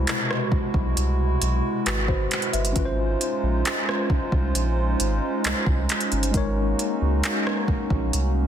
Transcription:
0.00 2.72 B2 medium
0.00 2.72 C3 medium
0.00 2.25 G#3 medium
0.00 8.47 G#3 medium
0.00 2.26 E4 medium
0.00 2.72 E4 medium
0.00 1.82 F#4 medium
0.00 2.72 F#4 medium
0.00 2.78 G4 medium
0.00 1.83 B4 medium
0.00 1.84 C5 medium
0.07 clap loud
0.07 closed hi-hat medium
0.31 cross-stick medium
0.52 0.61 B1 soft
0.52 kick medium
0.74 0.94 B1 medium
0.74 kick loud
0.97 1.37 C2 loud
0.97 closed hi-hat medium
1.42 1.62 B1 loud
1.42 closed hi-hat medium
1.86 2.27 G#1 medium
1.86 2.08 F#4 medium
1.86 2.08 B4 medium
1.86 clap loud
1.86 closed hi-hat medium
2.08 2.51 F#4 medium
2.08 2.51 C5 medium
2.08 kick medium
2.31 clap medium
2.31 closed hi-hat medium
2.42 closed hi-hat medium
2.53 2.74 G1 loud
2.53 2.78 B4 medium
2.53 2.96 E5 medium
2.53 closed hi-hat medium
2.65 closed hi-hat medium
2.73 3.16 G#1 loud
2.73 6.28 C#4 medium
2.73 8.47 C#4 medium
2.73 8.47 D#4 medium
2.73 6.30 F4 medium
2.73 6.31 C5 medium
2.73 kick loud
2.73 closed hi-hat medium
2.79 2.84 B4 medium
2.85 6.35 C5 medium
3.21 closed hi-hat medium
3.43 3.63 A#1 medium
3.65 clap loud
3.65 closed hi-hat medium
3.89 cross-stick medium
4.10 4.19 C2 soft
4.10 kick medium
4.32 4.53 C2 loud
4.32 kick loud
4.55 4.95 A#1 medium
4.55 closed hi-hat medium
5.00 5.20 G#1 loud
5.00 closed hi-hat medium
5.44 5.54 C2 soft
5.44 clap loud
5.44 closed hi-hat medium
5.67 5.87 C2 medium
5.67 kick loud
5.89 clap medium
5.89 closed hi-hat medium
6.00 closed hi-hat medium
6.12 6.32 G1 loud
6.12 closed hi-hat medium
6.23 closed hi-hat medium
6.31 6.74 G#1 loud
6.31 8.47 G#3 medium
6.31 8.47 A#3 medium
6.31 8.47 D#4 medium
6.31 8.47 F#4 medium
6.31 kick loud
6.31 closed hi-hat medium
6.35 8.47 A#4 medium
6.35 8.47 C#5 medium
6.79 closed hi-hat medium
7.02 7.22 C#2 loud
7.24 clap loud
7.24 closed hi-hat medium
7.47 cross-stick medium
7.68 7.77 A#1 soft
7.68 kick loud
7.90 8.11 A#1 medium
7.90 kick loud
8.13 8.47 C2 loud
8.13 closed hi-hat medium

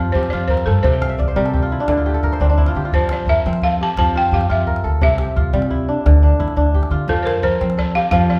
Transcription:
0.00 0.89 F3 medium
0.00 1.09 C4 medium
0.00 0.32 F4 medium
0.00 0.15 G4 medium
0.00 0.56 A4 medium
0.00 0.39 A#4 medium
0.00 0.13 C5 medium
0.00 0.14 D5 medium
0.12 0.28 F2 medium
0.12 1.53 G4 medium
0.12 0.31 C5 medium
0.12 calabash thump medium
0.23 calabash click soft
0.30 0.59 F2 medium
0.30 1.15 F4 medium
0.30 0.47 D5 medium
0.41 calabash click soft
0.48 1.36 A#4 medium
0.48 0.65 C5 medium
0.48 calabash thump medium
0.57 calabash click soft
0.66 0.80 G2 medium
0.66 0.84 A4 medium
0.66 1.42 A4 medium
0.83 1.11 C2 medium
0.83 1.94 C3 medium
0.83 1.84 C5 medium
0.83 calabash thump medium
0.83 calabash click soft
0.93 1.87 G5 medium
1.01 1.78 F5 medium
1.01 calabash click medium
1.09 1.68 E5 medium
1.18 1.33 C2 medium
1.18 2.29 D5 medium
1.18 calabash thump medium
1.28 2.32 C5 medium
1.36 1.77 C3 medium
1.36 1.94 G3 medium
1.36 2.20 A#4 medium
1.45 2.14 A4 medium
1.45 calabash click soft
1.54 2.05 G4 medium
1.54 calabash thump medium
1.62 1.95 F4 medium
1.71 1.89 E4 medium
1.71 calabash click soft
1.79 2.40 D4 medium
1.79 calabash click soft
1.88 2.15 D2 loud
1.88 2.98 D3 medium
1.88 2.57 E4 medium
1.88 calabash thump medium
1.88 calabash click medium
1.97 2.64 F4 medium
1.97 calabash click soft
2.06 2.76 G4 medium
2.06 calabash click soft
2.14 3.35 A4 medium
2.23 2.37 D2 medium
2.23 3.29 A#4 medium
2.23 calabash thump medium
2.23 calabash click soft
2.32 3.11 C5 medium
2.32 calabash click soft
2.40 2.67 D2 medium
2.40 3.46 C4 medium
2.40 2.49 D4 medium
2.40 calabash click soft
2.50 4.17 D4 medium
2.50 calabash click soft
2.58 2.91 E4 medium
2.58 calabash thump medium
2.66 2.85 F4 medium
2.66 calabash click medium
2.75 2.89 D3 medium
2.75 3.81 G4 medium
2.85 4.15 F4 medium
2.93 3.20 F2 medium
2.93 3.97 F3 medium
2.93 3.11 C5 medium
2.93 calabash thump medium
3.09 4.30 C5 medium
3.09 3.20 D5 medium
3.09 calabash click medium
3.27 3.41 F2 medium
3.27 4.57 A#4 medium
3.27 3.64 E5 medium
3.27 calabash thump medium
3.46 3.86 F3 medium
3.46 5.26 C4 medium
3.53 calabash click medium
3.62 4.73 A4 medium
3.62 3.81 F5 medium
3.62 calabash thump medium
3.81 4.33 G4 medium
3.81 3.97 A5 loud
3.97 4.24 F2 medium
3.97 5.06 F3 medium
3.97 4.16 A5 medium
3.97 calabash thump medium
3.97 calabash click medium
4.15 4.49 F4 medium
4.15 4.34 G5 medium
4.15 calabash click soft
4.32 4.45 F2 medium
4.32 5.18 G4 medium
4.32 4.49 F5 medium
4.32 calabash thump medium
4.41 calabash click medium
4.49 4.76 F2 medium
4.49 5.36 F4 medium
4.49 4.82 E5 medium
4.67 5.94 A#4 medium
4.67 calabash thump medium
4.76 calabash click medium
4.84 4.98 D2 medium
4.84 6.16 A4 medium
5.01 5.29 C2 medium
5.01 6.10 C3 medium
5.01 6.02 E5 medium
5.01 calabash thump medium
5.18 6.60 G4 medium
5.18 calabash click medium
5.36 5.49 C2 medium
5.36 6.46 F4 medium
5.36 calabash thump medium
5.53 5.93 C3 loud
5.53 6.10 G3 medium
5.62 calabash click medium
5.70 6.39 E4 medium
5.70 calabash thump medium
5.88 6.22 D4 medium
6.06 6.32 D2 loud
6.06 7.13 D3 medium
6.06 calabash thump medium
6.06 calabash click medium
6.23 6.57 D4 medium
6.23 calabash click soft
6.40 6.53 D2 medium
6.40 6.97 E4 medium
6.40 calabash thump medium
6.48 calabash click soft
6.56 6.83 D2 medium
6.56 8.25 D4 medium
6.67 calabash click soft
6.74 7.95 G4 medium
6.74 calabash thump soft
6.83 calabash click soft
6.91 7.04 D3 medium
6.91 8.29 F4 medium
7.08 7.35 F2 medium
7.08 8.12 F3 medium
7.08 7.15 A4 medium
7.08 calabash thump medium
7.23 7.43 A#4 medium
7.23 7.26 C5 medium
7.23 8.40 C5 medium
7.27 calabash click medium
7.42 7.56 F2 medium
7.42 8.40 A#4 medium
7.42 7.79 C5 medium
7.42 calabash thump medium
7.61 8.01 F3 loud
7.61 8.40 C4 medium
7.70 calabash click medium
7.77 8.40 A4 medium
7.77 7.96 D5 loud
7.77 calabash thump medium
7.95 8.40 G4 medium
7.95 8.10 F5 loud
8.11 8.38 F2 loud
8.11 8.40 F3 medium
8.11 8.29 F5 loud
8.11 calabash thump medium
8.11 calabash click medium
8.30 8.40 F4 medium
8.30 8.40 D5 medium
8.30 calabash click soft

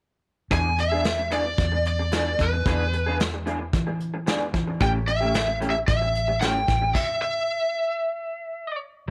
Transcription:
0.51 1.54 E2 medium
0.51 0.67 E3 medium
0.51 0.68 B3 medium
0.51 0.68 D4 medium
0.51 0.68 G#4 medium
0.51 0.77 G#5 medium
0.51 kick medium
0.51 closed hi-hat medium
0.78 1.29 E5 medium
0.78 muted clean electric guitar stroke soft
0.78 closed hi-hat medium
0.92 1.04 B3 soft
0.92 1.04 D4 soft
0.92 1.05 G#4 soft
1.04 muted clean electric guitar stroke soft
1.04 snare medium
1.04 closed hi-hat medium
1.18 muted clean electric guitar stroke soft
1.31 1.45 E3 medium
1.31 1.45 B3 medium
1.31 1.45 D4 medium
1.31 1.44 G#4 medium
1.31 1.86 D5 medium
1.31 closed hi-hat medium
1.45 muted clean electric guitar stroke soft
1.58 2.35 E2 medium
1.58 kick medium
1.58 closed hi-hat medium
1.72 muted clean electric guitar stroke soft
1.85 2.42 D5 medium
1.85 closed hi-hat medium
1.99 muted clean electric guitar stroke soft
2.12 2.28 E3 medium
2.12 2.29 B3 medium
2.12 2.29 D4 medium
2.12 2.29 G#4 medium
2.12 snare medium
2.12 closed hi-hat medium
2.39 2.63 E2 medium
2.39 3.17 B4 medium
2.39 muted clean electric guitar stroke soft
2.39 kick medium
2.39 closed hi-hat medium
2.53 muted clean electric guitar stroke soft
2.66 3.69 E2 medium
2.66 2.82 E3 medium
2.66 2.82 B3 medium
2.66 2.83 D4 medium
2.66 2.83 G#4 medium
2.66 kick medium
2.66 closed hi-hat medium
2.93 muted clean electric guitar stroke soft
2.93 closed hi-hat medium
3.06 3.19 B3 soft
3.06 3.19 D4 soft
3.06 3.19 G#4 soft
3.20 muted clean electric guitar stroke soft
3.20 snare loud
3.20 closed hi-hat medium
3.34 muted clean electric guitar stroke soft
3.46 3.60 E3 medium
3.46 3.60 B3 medium
3.46 3.59 D4 medium
3.46 3.59 G#4 medium
3.46 closed hi-hat medium
3.60 muted clean electric guitar stroke soft
3.73 4.50 E3 loud
3.73 kick loud
3.73 closed hi-hat medium
3.87 muted clean electric guitar stroke soft
4.00 closed hi-hat soft
4.14 muted clean electric guitar stroke soft
4.26 4.43 E3 medium
4.26 4.43 B3 medium
4.26 4.44 D4 medium
4.26 4.44 G#4 medium
4.26 snare medium
4.26 closed hi-hat medium
4.53 4.78 E3 medium
4.53 muted clean electric guitar stroke soft
4.53 kick medium
4.53 closed hi-hat medium
4.67 muted clean electric guitar stroke soft
4.80 5.84 A1 medium
4.80 4.97 E3 medium
4.80 4.97 A3 medium
4.80 4.97 C#4 medium
4.80 4.97 G4 medium
4.80 4.89 G5 loud
4.80 kick medium
4.80 closed hi-hat medium
5.07 5.57 E5 medium
5.07 muted clean electric guitar stroke soft
5.07 closed hi-hat medium
5.21 5.34 A3 soft
5.21 5.34 C#4 soft
5.21 5.34 G4 soft
5.34 muted clean electric guitar stroke soft
5.34 snare loud
5.34 closed hi-hat medium
5.48 muted clean electric guitar stroke soft
5.60 5.74 E3 medium
5.60 5.75 A3 medium
5.60 5.74 C#4 medium
5.60 5.74 G4 medium
5.60 closed hi-hat medium
5.70 5.75 E5 medium
5.75 muted clean electric guitar stroke soft
5.88 6.64 A1 medium
5.88 6.38 E5 medium
5.88 kick loud
5.88 closed hi-hat medium
6.01 muted clean electric guitar stroke soft
6.15 closed hi-hat medium
6.28 muted clean electric guitar stroke soft
6.41 6.57 E3 medium
6.41 6.58 A3 medium
6.41 6.58 C#4 medium
6.41 6.58 G4 medium
6.41 6.96 G5 medium
6.41 snare loud
6.41 closed hi-hat medium
6.68 6.93 A1 medium
6.68 muted clean electric guitar stroke soft
6.68 kick medium
6.68 snare soft
6.68 closed hi-hat medium
6.81 muted clean electric guitar stroke soft
6.95 7.20 E5 medium
6.95 kick medium
6.95 crash medium
7.22 8.78 E5 medium

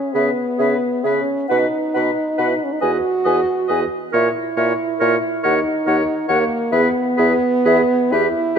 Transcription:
0.00 0.16 C#4 medium
0.14 0.31 C#3 soft
0.14 1.06 B3 medium
0.14 0.30 G#4 soft
0.14 0.31 B4 soft
0.14 0.26 E5 soft
0.58 0.75 C#3 soft
0.58 0.74 G#4 soft
0.58 0.77 B4 soft
0.58 0.69 E5 soft
1.04 1.21 C#3 soft
1.04 1.49 C#4 medium
1.04 1.20 G#4 soft
1.04 1.22 B4 soft
1.04 1.14 E5 soft
1.48 1.67 B2 medium
1.48 2.48 D#4 medium
1.48 1.65 B4 soft
1.48 1.67 B4 soft
1.48 1.58 F#5 soft
1.94 2.11 B2 soft
1.94 2.10 B4 soft
1.94 2.11 B4 soft
1.94 2.04 F#5 soft
2.38 2.55 B2 soft
2.38 2.54 B4 soft
2.38 2.48 F#5 soft
2.47 2.57 E4 medium
2.55 2.66 D#4 medium
2.64 2.74 C#4 medium
2.72 2.81 D#4 medium
2.81 2.98 E2 soft
2.81 3.85 F#4 medium
2.81 2.97 B4 soft
2.81 2.97 D#5 soft
2.81 2.91 G#5 soft
3.24 3.41 E2 soft
3.24 3.41 B4 soft
3.24 3.40 D#5 soft
3.24 3.36 G#5 soft
3.68 3.86 E2 soft
3.68 3.85 B4 soft
3.68 3.84 D#5 soft
3.68 3.80 G#5 soft
4.12 4.29 A#2 medium
4.12 5.46 E4 medium
4.12 4.28 A#4 soft
4.12 4.29 C#5 soft
4.12 4.24 E5 soft
4.57 4.73 A#2 medium
4.57 4.73 A#4 soft
4.57 4.73 C#5 soft
4.57 4.68 E5 soft
5.00 5.17 A#2 medium
5.00 5.16 A#4 soft
5.00 5.16 C#5 soft
5.00 5.11 E5 soft
5.43 5.61 D#2 soft
5.43 6.29 D#4 medium
5.43 5.59 A#4 soft
5.43 5.59 C#5 soft
5.43 5.54 F#5 soft
5.86 6.03 D#2 medium
5.86 6.02 A#4 soft
5.86 6.04 C#5 soft
5.86 5.97 F#5 soft
6.28 6.45 D#2 soft
6.28 6.75 A#3 medium
6.28 6.44 A#4 soft
6.28 6.45 C#5 soft
6.28 6.38 F#5 medium
6.72 6.88 E2 medium
6.72 8.14 B3 medium
6.72 6.88 G#4 medium
6.72 6.88 B4 medium
6.72 6.82 E5 medium
7.17 7.35 E2 medium
7.17 7.33 G#4 soft
7.17 7.33 B4 medium
7.17 7.30 E5 soft
7.65 7.81 E2 medium
7.65 7.82 G#4 medium
7.65 7.81 B4 soft
7.65 7.77 E5 medium
8.11 8.28 E2 medium
8.11 8.59 E4 medium
8.11 8.29 G4 medium
8.11 8.27 B4 medium
8.11 8.22 E5 medium
8.55 8.59 B4 soft

